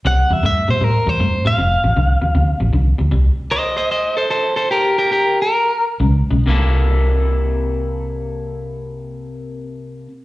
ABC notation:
X:1
M:4/4
L:1/8
Q:"Swing" 1/4=146
K:Cmix
V:1 name="Lead electric guitar"
^f e e c B c2 =f- | f4- f z3 | z2 [c_e] [ce] [ce] [Ac] [Ac] [Ac] | [GB] [GB] [GB] B2 z3 |
z8 | z8 |]
V:2 name="Clean electric guitar" clef=bass
[C,G,] [C,G,] [C,A,] [C,G,] [C,G,] [C,G,] [C,A,] [C,G,] | [F,,C,] [F,,C,] [F,,D,] [F,,C,] [F,,C,] [F,,C,] [F,,D,] [F,,C,] | [C,G,] z6 z | z6 [_D,_A,] [D,A,] |
[C,B,EA]8- | [C,B,EA]8 |]
V:3 name="Fingered electric bass" clef=bass
C,, E,, G,, B,, A,, E,, G,, A,, | F,,, A,,, C,, _E,, D,, A,,, C,, D,, | C,, z6 z | z6 _D,, =B,,, |
C,,8- | C,,8 |]